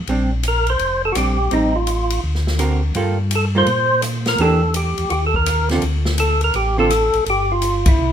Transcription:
0.07 A#1 G3 C4 D4, ride
0.43 hi-hat pedal, ride
0.48 A#4
0.67 C5, ride
0.79 F1, ride
1.05 A4
1.12 A#1 G3 C4 F#4, cross-stick, hi-hat pedal, ride
1.16 D4 G4
1.51 A1 G3 C4 D#4, ride
1.76 F4
1.87 hi-hat pedal, ride
2.10 ride
2.24 D2
2.35 snare
2.47 snare
2.58 D3 C4 F#4 A#4, cross-stick, hi-hat pedal, ride
2.95 G2 G3 A#3 F4 A4, ride
3.31 hi-hat pedal, ride
3.35 A4
3.55 G3 A#3 F4 A4 C5
3.67 A#2, ride
4.02 cross-stick, hi-hat pedal, ride
4.26 A#4, snare, ride
4.38 E2 E3 A#3 D4 G4 A4, ride
4.74 G4, hi-hat pedal, ride
4.98 E2, ride
5.10 D#2 F#4 G4, ride
5.26 A4
5.34 A#4, kick
5.46 cross-stick, hi-hat pedal, ride
5.69 D3 C4 F4 A4, snare, ride
5.82 D2, ride
6.05 snare
6.18 A4, hi-hat pedal, ride
6.41 A#4, ride
6.54 A1 G4, ride
6.78 D3 C4 F4 A4
6.90 cross-stick, hi-hat pedal, ride
7.13 A1, ride
7.26 G1 G4, ride
7.52 F4
7.62 hi-hat pedal, ride
7.86 E4, kick, ride
7.99 C2

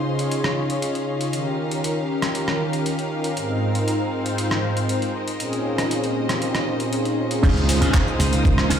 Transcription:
Already playing: C#4 D#5 F5 C6
0.05 C#3 D#4 F4 G#4 C#5
0.19 closed hi-hat
0.31 closed hi-hat
0.44 cross-stick
0.70 closed hi-hat
0.82 closed hi-hat
0.95 closed hi-hat
1.21 closed hi-hat
1.32 D#3 C#4 F4 G4 A#4, closed hi-hat
1.71 closed hi-hat
1.84 closed hi-hat
2.08 D#3 C#4 F4 G4 A#4
2.22 cross-stick, closed hi-hat
2.35 closed hi-hat
2.48 cross-stick
2.73 closed hi-hat
2.86 closed hi-hat
2.99 closed hi-hat
3.24 closed hi-hat
3.36 G#2 G#3 C4 D#4 F4 A#4, closed hi-hat
3.75 closed hi-hat
3.88 closed hi-hat
4.12 G#2 C4 D#4 F4 C5
4.26 closed hi-hat
4.38 closed hi-hat
4.51 cross-stick
4.77 closed hi-hat
4.89 closed hi-hat
5.02 closed hi-hat
5.14 C5 D#5
5.28 closed hi-hat
5.39 A#2 C4 C#4 D#4 F4 G#4, closed hi-hat
5.53 closed hi-hat
5.78 cross-stick, closed hi-hat
5.91 closed hi-hat
6.04 closed hi-hat
6.16 A#2 C4 C#4 D#4 F4 G4
6.29 cross-stick, closed hi-hat
6.42 closed hi-hat, swell
6.55 cross-stick, closed hi-hat
6.67 A#2 C4 C#4 D#4 F4 A#4
6.79 A#2 C4 C#4 D#4 F4 G#4, closed hi-hat
6.93 closed hi-hat
7.05 closed hi-hat
7.31 closed hi-hat
7.42 C#2 C#4 D#4 F4 G#4 C5 F5 D#6, kick, closed hi-hat, crash, downlifter, cabasa
7.57 cabasa
7.68 muted clean electric guitar stroke, open hi-hat, cabasa
7.81 C#2 C#4 D#4 F4 C5, closed hi-hat, cabasa
7.94 kick, clap, closed hi-hat, cabasa
8.08 cabasa
8.19 C#2 D#4 F4 A#4 C5, muted clean electric guitar stroke, open hi-hat, cabasa
8.32 muted clean electric guitar stroke, closed hi-hat, cabasa
8.45 kick, closed hi-hat, cabasa
8.58 cross-stick, cabasa
8.70 C#2 C#4 D#4 F4 C5, open hi-hat, cabasa

